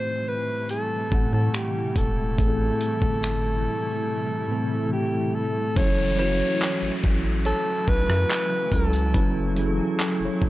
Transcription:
0.00 1.10 A2 medium
0.00 5.72 C3 medium
0.00 5.72 E3 medium
0.00 5.73 G3 medium
0.00 1.11 A3 medium
0.00 5.72 A3 medium
0.00 1.13 C4 medium
0.00 5.72 E4 medium
0.00 5.78 G4 loud
0.00 0.30 C5 loud
0.28 0.70 B4 loud
0.69 1.29 A4 loud
0.69 closed hi-hat medium
1.10 1.28 A1 medium
1.10 2.22 A2 medium
1.10 2.23 A3 medium
1.10 2.24 C4 medium
1.10 kick medium
1.14 2.24 F#5 medium
1.33 1.49 A2 loud
1.33 1.56 A4 medium
1.54 1.99 G4 medium
1.54 finger snap loud
1.54 closed hi-hat medium
1.96 2.40 E1 medium
1.96 4.92 A4 medium
1.96 kick medium
1.96 closed hi-hat medium
2.36 2.71 A1 loud
2.36 3.86 A2 medium
2.36 3.87 A3 medium
2.36 3.87 C4 medium
2.36 kick loud
2.36 closed hi-hat medium
2.41 2.46 G#4 medium
2.48 3.92 A4 medium
2.81 closed hi-hat medium
3.02 3.68 G1 medium
3.02 kick medium
3.23 finger snap loud
3.23 closed hi-hat medium
4.48 5.60 A2 medium
4.48 5.61 A3 medium
4.48 5.62 C4 medium
4.52 5.62 A4 loud
4.93 5.36 G4 medium
5.35 5.79 A4 medium
5.74 6.42 F#1 loud
5.74 10.49 C#3 medium
5.74 10.49 E3 medium
5.74 6.13 F#3 medium
5.74 10.49 F#3 medium
5.74 10.49 A3 medium
5.74 6.13 C#4 medium
5.74 10.49 E4 medium
5.74 6.14 E4 medium
5.74 6.19 C#5 loud
5.74 kick loud
5.74 closed hi-hat medium
5.74 downlifter medium
5.79 6.15 A4 medium
6.17 7.66 F#3 medium
6.17 7.67 C#4 medium
6.17 7.68 E4 medium
6.17 7.31 B4 medium
6.17 7.00 C#5 loud
6.17 closed hi-hat medium
6.21 7.69 F#4 medium
6.61 clap loud
6.61 closed hi-hat medium
6.82 6.91 A1 soft
7.04 7.53 A1 medium
7.04 kick medium
7.45 7.90 A4 loud
7.45 8.58 C#5 medium
7.45 closed hi-hat medium
7.88 8.04 B1 loud
7.88 8.74 B4 loud
7.88 kick medium
8.09 8.25 F#2 loud
8.09 cross-stick medium
8.30 clap loud
8.30 closed hi-hat medium
8.70 9.16 C#2 medium
8.70 9.08 F#3 medium
8.70 9.09 C#4 medium
8.70 9.10 E4 medium
8.70 9.57 A4 medium
8.70 kick medium
8.70 closed hi-hat soft
8.75 9.11 A4 medium
8.93 closed hi-hat medium
9.13 9.80 F#1 loud
9.13 9.51 F#3 medium
9.13 9.52 C#4 medium
9.13 9.52 E4 medium
9.13 10.26 B4 medium
9.13 kick loud
9.13 closed hi-hat medium
9.17 9.53 A4 medium
9.55 10.49 F#3 medium
9.55 10.49 C#4 medium
9.55 10.49 E4 medium
9.55 closed hi-hat medium
9.59 9.65 G#4 medium
9.66 10.49 A4 medium
9.99 10.49 A4 medium
9.99 clap loud
9.99 closed hi-hat medium
10.20 10.28 F#1 soft
10.25 10.49 C#5 medium
10.42 10.49 F#1 medium
10.42 kick medium

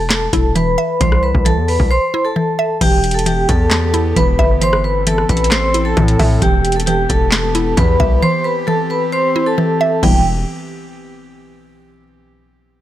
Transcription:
0.00 0.29 E1 loud
0.00 0.54 E3 medium
0.00 0.51 A4 medium
0.00 0.52 A5 medium
0.10 snare loud
0.10 clap medium
0.10 closed hi-hat medium
0.33 0.76 E1 loud
0.33 1.01 E4 medium
0.33 kick medium
0.33 closed hi-hat medium
0.55 1.00 E3 medium
0.55 0.98 B4 medium
0.55 0.98 B5 medium
0.55 closed hi-hat medium
0.78 1.01 E5 medium
1.01 1.33 C2 loud
1.01 1.45 E3 loud
1.01 1.21 C5 loud
1.01 1.21 C6 medium
1.01 kick loud
1.01 closed hi-hat medium
1.12 cross-stick medium
1.23 1.43 B4 medium
1.23 1.43 B5 medium
1.35 1.59 C2 loud
1.35 kick medium
1.45 2.35 E3 medium
1.45 1.65 A4 medium
1.45 1.66 A5 medium
1.45 closed hi-hat medium
1.57 1.79 E2 loud
1.68 1.88 B4 medium
1.68 1.89 B5 medium
1.68 open hi-hat medium
1.80 1.91 C2 loud
1.80 kick medium
1.91 2.23 C5 loud
1.91 2.23 C6 medium
2.14 2.81 E4 medium
2.25 2.78 A4 medium
2.25 2.78 A5 medium
2.36 2.80 E3 medium
2.59 2.81 E5 medium
2.81 3.46 E1 loud
2.81 9.99 E3 medium
2.81 3.25 E3 loud
2.81 4.60 B3 medium
2.81 4.60 G4 medium
2.81 3.13 G4 loud
2.81 3.13 G5 medium
2.81 kick loud
2.81 closed hi-hat medium
2.81 crash loud
3.04 closed hi-hat medium
3.11 3.25 A4 medium
3.11 closed hi-hat medium
3.15 3.25 A5 medium
3.15 closed hi-hat medium
3.26 4.15 E3 medium
3.26 3.46 G4 medium
3.26 3.47 G5 medium
3.26 closed hi-hat medium
3.49 4.14 E2 loud
3.49 4.13 A4 medium
3.49 4.13 A5 medium
3.49 kick medium
3.49 closed hi-hat medium
3.71 snare loud
3.71 clap medium
3.71 closed hi-hat medium
3.94 4.61 E4 medium
3.94 closed hi-hat medium
4.16 4.38 E1 loud
4.16 4.60 E3 medium
4.16 4.59 B4 loud
4.16 4.59 B5 medium
4.16 kick medium
4.16 closed hi-hat medium
4.39 5.26 G1 loud
4.39 4.62 E5 loud
4.39 kick loud
4.61 5.06 E3 loud
4.61 6.40 C4 medium
4.61 6.40 A4 loud
4.61 4.82 C5 loud
4.61 4.82 C6 medium
4.61 closed hi-hat medium
4.73 cross-stick loud
4.84 5.04 B4 medium
4.84 5.05 B5 medium
5.07 5.96 E3 medium
5.07 5.27 A4 loud
5.07 5.27 A5 medium
5.07 closed hi-hat loud
5.18 cross-stick medium
5.29 5.94 A1 loud
5.29 5.49 B4 medium
5.29 5.50 B5 medium
5.29 kick medium
5.29 closed hi-hat medium
5.37 closed hi-hat medium
5.44 closed hi-hat medium
5.51 5.84 C5 loud
5.51 5.84 C6 medium
5.51 snare loud
5.51 clap medium
5.51 closed hi-hat medium
5.74 6.42 E4 medium
5.74 closed hi-hat medium
5.85 6.38 A4 medium
5.85 6.39 A5 medium
5.97 6.19 A2 loud
5.97 6.41 E3 medium
5.97 kick loud
5.97 closed hi-hat soft
6.08 closed hi-hat medium
6.19 6.41 A2 loud
6.19 6.42 E5 medium
6.19 kick medium
6.19 open hi-hat medium
6.42 7.07 E1 loud
6.42 6.86 E3 medium
6.42 8.21 B3 medium
6.42 9.99 G4 medium
6.42 6.74 G4 loud
6.42 6.74 G5 medium
6.42 kick loud
6.42 closed hi-hat medium
6.65 closed hi-hat medium
6.72 6.86 A4 medium
6.72 closed hi-hat medium
6.77 6.86 A5 medium
6.77 closed hi-hat medium
6.86 7.76 E3 medium
6.86 7.07 G4 medium
6.86 7.07 G5 medium
6.86 closed hi-hat medium
7.09 7.75 E1 loud
7.09 7.73 A4 medium
7.09 7.74 A5 medium
7.09 kick medium
7.09 closed hi-hat medium
7.32 snare loud
7.32 clap medium
7.32 closed hi-hat medium
7.55 8.23 E4 medium
7.55 closed hi-hat medium
7.77 7.99 E2 loud
7.77 8.21 E3 medium
7.77 8.20 B4 medium
7.77 8.20 B5 medium
7.77 kick loud
7.77 closed hi-hat medium
8.00 8.23 C2 loud
8.00 8.22 E5 medium
8.00 kick loud
8.22 8.66 E3 medium
8.22 10.01 C4 medium
8.22 8.42 C5 loud
8.22 8.43 C6 medium
8.44 8.65 B4 medium
8.44 8.65 B5 medium
8.67 9.57 E3 medium
8.67 8.87 A4 medium
8.67 8.88 A5 medium
8.90 9.10 B4 medium
8.90 9.10 B5 medium
9.12 9.44 C5 loud
9.12 9.45 C6 medium
9.36 10.02 E4 medium
9.46 10.00 A4 medium
9.46 10.00 A5 medium
9.58 10.02 E3 medium
9.81 10.03 E5 medium
10.03 10.45 E1 loud
10.03 10.24 E3 medium
10.03 10.24 G3 medium
10.03 10.24 B3 medium
10.03 10.24 E4 medium
10.03 10.24 G5 medium
10.03 kick loud
10.03 crash medium

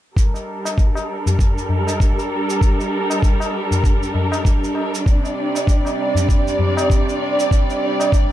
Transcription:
0.16 5.02 G3 medium
0.16 8.32 D4 medium
0.16 5.02 A4 medium
0.16 5.02 A#4 medium
0.16 kick medium
0.16 shaker medium
0.34 tabla na soft
0.34 tabla tin soft
0.34 shaker soft
0.65 tabla na medium
0.65 tabla tin soft
0.65 shaker medium
0.78 kick medium
0.78 shaker soft
0.95 tabla na medium
0.95 shaker soft
1.26 tabla ge medium
1.26 shaker medium
1.39 kick medium
1.39 shaker soft
1.58 shaker soft
1.69 tabla tin medium
1.69 tabla ge medium
1.87 tabla na medium
1.87 shaker medium
2.00 kick medium
2.00 shaker medium
2.19 shaker soft
2.50 shaker medium
2.61 kick loud
2.61 shaker medium
2.79 tabla na soft
2.79 tabla tin soft
2.79 shaker soft
3.10 tabla na medium
3.10 shaker medium
3.22 kick loud
3.22 shaker medium
3.40 tabla na medium
3.40 shaker soft
3.71 tabla ge medium
3.71 shaker medium
3.84 kick loud
3.84 shaker soft
4.03 shaker soft
4.14 tabla tin soft
4.14 tabla ge medium
4.32 tabla na medium
4.32 tabla tin soft
4.32 shaker medium
4.45 kick medium
4.45 shaker medium
4.63 tabla tin soft
4.63 shaker soft
4.75 tabla na medium
4.94 shaker medium
5.06 8.32 C3 medium
5.06 8.32 G3 medium
5.06 8.32 D5 medium
5.06 kick loud
5.06 shaker medium
5.23 tabla na soft
5.23 tabla tin soft
5.23 shaker soft
5.54 tabla na medium
5.54 tabla tin soft
5.54 shaker medium
5.67 kick loud
5.67 shaker soft
5.85 tabla na medium
5.85 shaker soft
6.15 tabla ge medium
6.15 shaker medium
6.29 kick medium
6.29 shaker soft
6.47 shaker soft
6.59 tabla tin soft
6.59 tabla ge medium
6.77 tabla na medium
6.77 shaker medium
6.90 kick medium
6.90 shaker medium
7.09 shaker soft
7.39 shaker medium
7.51 kick loud
7.51 shaker medium
7.69 tabla na soft
7.69 tabla tin soft
7.69 shaker soft
8.00 tabla na medium
8.00 shaker medium
8.12 kick loud
8.12 shaker soft

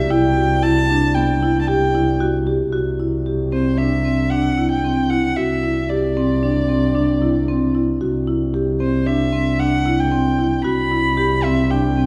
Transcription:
0.00 2.70 C2 medium
0.00 2.43 D5 medium
0.00 0.12 E5 medium
0.10 0.25 E4 medium
0.10 0.64 G5 medium
0.37 0.51 F#4 medium
0.62 0.77 E4 medium
0.62 1.16 A5 medium
0.90 1.04 D4 medium
1.14 1.30 B3 medium
1.14 1.60 G5 medium
1.43 1.57 E4 medium
1.61 1.69 A5 medium
1.67 1.83 G4 medium
1.67 2.21 G5 medium
1.95 2.09 E4 medium
2.20 2.35 F#4 medium
2.47 2.61 G4 medium
2.72 5.37 C2 medium
2.72 2.87 F#4 medium
3.00 3.14 E4 medium
3.26 3.41 G4 medium
3.52 3.67 C4 medium
3.52 3.79 C5 medium
3.77 3.93 D4 medium
3.77 4.32 E5 medium
4.05 4.20 C4 medium
4.30 4.46 D4 medium
4.30 4.70 F#5 medium
4.58 4.72 E4 medium
4.70 5.11 G5 medium
4.84 4.99 C4 medium
5.10 5.25 E4 medium
5.10 5.37 F#5 medium
5.36 8.00 C2 medium
5.36 5.52 F#4 medium
5.36 5.91 E5 medium
5.63 5.78 E4 medium
5.90 6.05 G4 medium
5.90 7.74 D5 medium
6.17 6.31 C4 medium
6.43 6.57 D4 medium
6.69 6.83 C4 medium
6.95 7.10 D4 medium
7.22 7.36 E4 medium
7.48 7.63 C4 medium
7.75 7.89 E4 medium
8.00 10.65 C2 medium
8.00 8.15 F#4 medium
8.27 8.42 E4 medium
8.54 8.68 G4 medium
8.80 8.95 C4 medium
8.80 9.08 C5 medium
9.07 9.21 D4 medium
9.07 9.61 E5 medium
9.33 9.47 C4 medium
9.59 9.74 D4 medium
9.59 10.00 F#5 medium
9.86 10.00 E4 medium
9.99 10.63 G5 medium
10.12 10.26 C4 medium
10.39 10.53 E4 medium
10.64 12.06 C2 medium
10.64 10.79 F#4 medium
10.64 11.46 B5 medium
10.91 11.06 E4 medium
11.17 11.32 G4 medium
11.44 11.59 C4 medium
11.44 11.72 E5 medium
11.70 11.85 D4 medium
11.70 12.06 G5 medium
11.97 12.06 C4 medium

